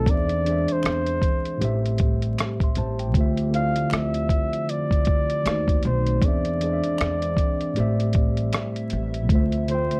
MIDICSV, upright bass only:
0, 0, Header, 1, 2, 480
1, 0, Start_track
1, 0, Key_signature, -1, "minor"
1, 0, Tempo, 769231
1, 43, Time_signature, 4, 2, 24, 8
1, 6239, End_track
2, 0, Start_track
2, 0, Title_t, "Upright bass"
2, 0, Program_c, 0, 32
2, 42, Note_on_c, 0, 40, 105
2, 403, Note_off_c, 0, 40, 0
2, 526, Note_on_c, 0, 40, 90
2, 743, Note_off_c, 0, 40, 0
2, 1006, Note_on_c, 0, 33, 99
2, 1459, Note_off_c, 0, 33, 0
2, 1727, Note_on_c, 0, 33, 93
2, 1962, Note_off_c, 0, 33, 0
2, 1962, Note_on_c, 0, 38, 99
2, 2322, Note_off_c, 0, 38, 0
2, 2449, Note_on_c, 0, 38, 88
2, 2665, Note_off_c, 0, 38, 0
2, 3405, Note_on_c, 0, 39, 93
2, 3623, Note_off_c, 0, 39, 0
2, 3649, Note_on_c, 0, 35, 104
2, 3865, Note_off_c, 0, 35, 0
2, 3881, Note_on_c, 0, 40, 98
2, 4242, Note_off_c, 0, 40, 0
2, 4372, Note_on_c, 0, 40, 98
2, 4587, Note_off_c, 0, 40, 0
2, 4853, Note_on_c, 0, 33, 101
2, 5303, Note_off_c, 0, 33, 0
2, 5570, Note_on_c, 0, 33, 91
2, 5801, Note_off_c, 0, 33, 0
2, 5801, Note_on_c, 0, 38, 104
2, 6162, Note_off_c, 0, 38, 0
2, 6239, End_track
0, 0, End_of_file